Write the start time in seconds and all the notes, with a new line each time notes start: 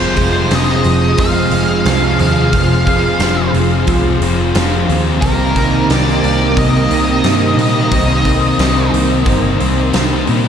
Already playing: F1 F2 C3 F3 G#3 C4 F4 G#4 C5
0.16 F1 C3 F3 G#3, kick, open hi-hat
0.50 F1 F2 C3 F3 G#3, snare, open hi-hat
0.55 D#5
0.68 snare
0.84 F1 F3, open hi-hat
1.17 F1 G#3 F5, kick, open hi-hat
1.51 F1 C3 F3 C4, open hi-hat
1.85 C2 F2 C3 F3, snare, open hi-hat
2.19 D#2 C3 F3 C4 F5, open hi-hat
2.53 F1 F2 C3 F3, kick, open hi-hat
2.86 C3 F3 G#3, kick, open hi-hat
3.19 F1 F2 C3 F3 G#3, snare, open hi-hat
3.54 F1 F3, open hi-hat
3.87 C2 G#3, kick, open hi-hat
4.21 F1 C3 F3 C4, open hi-hat
4.54 F1 F2 C3 F3, snare, open hi-hat
4.88 D#2 C3 F3 C4, open hi-hat
5.21 C2 C3 D#3 G3 A#3 C4 D#4 A#4, kick, open hi-hat
5.25 A#3 C4 G4
5.56 C2 G3 A#3 C4, kick, snare, open hi-hat
5.89 C2 C3 G3 A#3 C4 D5, snare, open hi-hat
6.08 snare
6.23 C2 D#3, open hi-hat
6.57 C2 A#3 D#5, kick, open hi-hat
6.89 C2 G3 C4, open hi-hat
7.23 G2 C3 D#3 G3 C4, snare, open hi-hat
7.56 A#2 G3 C4, open hi-hat
7.62 D#5
7.90 C2 C3 D#3 G3 C4 C5, kick, open hi-hat
8.24 G3 A#3 C4, kick, open hi-hat
8.58 C2 C3 G3 A#3 C4, snare, open hi-hat
8.93 C2 D#3, open hi-hat
9.26 G1 A#3, kick, open hi-hat
9.59 C2 G3 C4, open hi-hat
9.93 C2 C3 D#3 G3 C4, snare, open hi-hat
10.27 A#2 G3 C4, open hi-hat